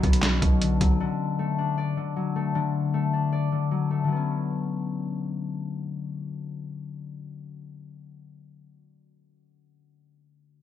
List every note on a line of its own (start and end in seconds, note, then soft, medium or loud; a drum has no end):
0.00 0.41 B1 loud
0.00 0.41 B2 loud
0.00 0.67 F#3 medium
0.00 1.04 A3 medium
0.00 3.14 B3 medium
0.00 0.23 C#4 loud
0.00 kick loud
0.00 closed hi-hat soft
0.00 downlifter medium
0.13 closed hi-hat medium
0.22 1.06 C#4 loud
0.22 snare loud
0.22 clap medium
0.22 closed hi-hat medium
0.42 0.79 B1 loud
0.42 0.67 B2 medium
0.42 kick loud
0.42 closed hi-hat medium
0.62 0.99 D3 medium
0.62 closed hi-hat medium
0.81 0.99 B1 loud
0.81 1.05 F#3 medium
0.81 kick medium
0.81 closed hi-hat medium
1.00 1.96 D3 loud
1.39 2.35 A3 medium
1.58 3.13 D4 medium
1.78 3.32 D5 medium
1.97 2.54 D3 medium
2.16 2.60 F#3 medium
2.36 2.93 A3 medium
2.55 3.51 D3 loud
2.94 3.90 A3 medium
3.13 4.22 D4 medium
3.32 4.22 D5 loud
3.52 4.03 D3 medium
3.71 4.07 F#3 medium
3.91 7.23 A3 medium
4.04 8.63 D3 medium
4.04 8.65 F#3 medium
4.12 8.67 B3 medium
4.16 8.69 C#4 medium